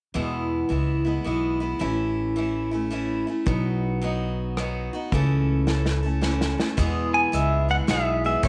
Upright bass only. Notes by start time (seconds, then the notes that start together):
0.15 E2
0.70 C#2
1.26 B1
1.81 A1
3.46 B1
5.12 C#2
6.78 E2
7.33 C#2
7.88 B1
8.43 A1